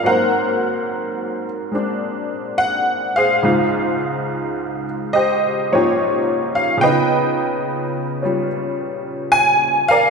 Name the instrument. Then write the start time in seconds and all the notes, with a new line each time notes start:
honky-tonk piano
0.03 G#2 F#3 A#3 A#4 F#5
0.07 C4 C5
1.72 G#3 C4 D4
2.58 F#5
3.16 G#4 C5 F5
3.43 C#2 G#2 G#3 D#4 F4
5.13 G4 C5 D#5
5.72 G#2 F3 A#3 C#4 D#4 F4 G4 C#5
6.55 F5
6.77 C#3 B3 G5
6.83 D#4 B4 D#5
6.89 F4
8.22 G3 C#4 F4
9.32 G#5
9.88 A#4 D5 F5